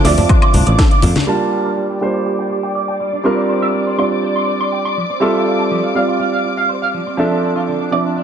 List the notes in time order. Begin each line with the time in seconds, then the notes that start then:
Already playing: F4 D6
0.04 D2 F3 C4 D4 D5 E5, snare, open hi-hat
0.18 D4, open hi-hat, muted conga, low conga
0.29 D4, kick, closed hi-hat, high woodblock
0.42 D5, closed hi-hat, high woodblock
0.53 C2 D4, open hi-hat, high conga, low conga
0.66 A1 D5, closed hi-hat, muted conga
0.79 A4, kick, snare, closed hi-hat
0.91 D5, closed hi-hat
1.02 F2 D3, open hi-hat, muted conga, low conga
1.16 A3, snare, closed hi-hat, high conga
1.27 G3 A#3 D4 F4 G4 D5 A5 D6
1.41 G4
1.52 G4
1.65 A#4
1.77 G3
1.90 G4
2.01 G3 A#3 D4 F4 C5 G5
2.14 G4
2.26 G4
2.39 G5
2.50 G4
2.63 G5
2.75 D5
2.88 G5
3.00 G3
3.13 D4
3.24 G3 C4 D4 F4 A#4 C5
3.37 C5
3.49 C5
3.62 E5
3.74 C4
3.87 C5
3.97 G3 C4 D4 F4 D5 C6
4.11 C5
4.23 C5
4.36 C6
4.47 C5
4.60 C6
4.72 G5
4.85 C6
4.97 F3
5.10 C4
5.20 G3 C4 F4 A4 E5
5.34 F4
5.46 F4
5.59 A4
5.71 F3
5.83 F4
5.94 G3 C4 F4 D5 F5
6.08 F4
6.20 F4
6.33 F5
6.45 F4
6.57 F5
6.69 C5
6.82 F5
6.94 F3
7.07 C4
7.17 F3 C4 D4 A4 E5
7.31 D4
7.43 D4
7.56 F4
7.68 D3
7.80 D4
7.91 F3 C4 D4 D5 E5
8.05 D4
8.16 D4